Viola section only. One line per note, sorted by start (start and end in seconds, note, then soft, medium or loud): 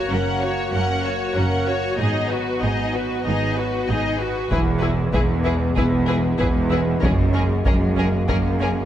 0.11 0.42 C#4 soft
0.40 0.72 F#4 soft
0.72 1.02 C#4 soft
1.04 1.36 F#4 soft
1.35 1.67 C#4 soft
1.68 1.99 F#4 soft
1.98 2.28 D#4 soft
2.30 2.62 F#4 soft
2.61 2.93 D#4 soft
2.94 3.25 F#4 soft
3.25 3.54 D#4 soft
3.56 3.88 F#4 soft
3.88 4.20 D#4 soft
4.19 4.51 F#4 soft
4.51 4.59 E4 soft
4.82 4.90 E4 soft
5.14 5.22 E4 soft
5.45 5.53 E4 soft
5.77 5.85 E4 soft
6.08 6.16 E4 soft
6.38 6.46 E4 soft
6.70 6.78 E4 soft
7.01 7.09 C#4 soft
7.34 7.42 C#4 soft
7.66 7.74 C#4 soft
7.96 8.04 C#4 soft
8.28 8.36 C#4 soft
8.59 8.67 C#4 soft